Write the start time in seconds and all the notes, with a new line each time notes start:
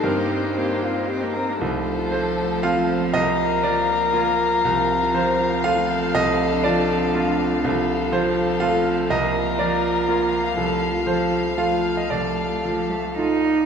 Already playing: G3 A#3 D#4 G4 C5
0.03 G2 C4 D#4 G4 A#4
0.17 A#3
0.29 C4 A#4
0.43 A#3 D#4
0.56 A#3 C4 G4 C5
0.69 A#3 G4
0.82 C4 D#4 F4
0.95 A#3 G4
1.08 C4 G4
1.21 A#3 D#4
1.34 C4 A#4
1.48 A#3 G4
1.60 C2 F3 A3 F4 A4 C5
1.73 A4
1.86 F5
1.99 F4
2.12 A3 A4 C5
2.38 F4
2.63 C4 F4 F5
2.76 F4
2.90 F5
3.02 F5
3.14 C2 A#3 A#4 D#5 F5
3.27 D6
3.39 A#5
3.53 A#4
3.63 F3 D5
3.90 A#4
4.13 A#3 F4 D5
4.27 A#4
4.64 C2 F3 C4 F4
4.77 A5
4.91 F5
5.03 F4
5.14 F3 C5
5.40 F4
5.64 A3 F4 A4 F5
5.78 F4
5.90 F5
6.03 F5
6.15 C2 A3 D#5
6.27 F4
6.39 D5
6.52 D4
6.64 F3 F4 D5
6.89 D4
7.13 A3 F4
7.26 D4
7.39 D5
7.51 D5
7.63 C2 F3 F4 A4
7.75 A4
7.89 F5
8.00 F4
8.12 F3 A4 C5
8.36 F4
8.60 A3 F4 A4 F5
8.72 F4
8.98 F5
9.10 C2 A#3 A#4 D#5 F5
9.21 D6
9.33 A#5
9.45 A#4
9.59 F3 D5
9.83 A#4
10.07 A#3 F4 D5
10.19 A#4
10.31 A#5
10.56 C2 F3 A3 F4 A4
10.68 A4
10.81 F5
10.93 F4
11.06 F3 A4 C5
11.31 F4
11.56 F3 A3 F4 A4 F5
11.70 F4
11.97 D#5 F5
12.09 C2 F3 A3 A4 D5
12.23 F4
12.37 D5
12.64 F3 F4
12.91 A3
13.18 A3 D#4 F4
13.45 D5
13.58 D5